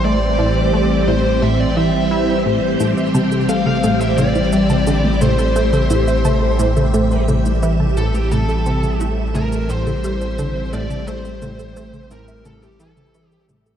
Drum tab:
SH |----------------|xxxxx-xxxxxxx-xx|xxxxx-xxxxxxx-xx|xxxxx-xxxxxxx-xx|
T1 |----------------|--o--o--o--o--o-|-o--o--o--o--o--|o--o--o--o--o--o|

SH |xxxxxxxxxxxxxxxx|
T1 |--o--o--o--o--o-|